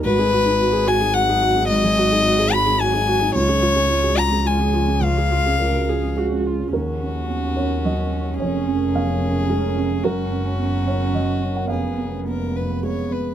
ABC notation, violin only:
X:1
M:3/4
L:1/8
Q:1/4=109
K:Ebm
V:1 name="Violin"
c3 a g2 | e3 c' a2 | d3 b a2 | f4 z2 |
G6 | A6 | G6 | A2 B c d c |]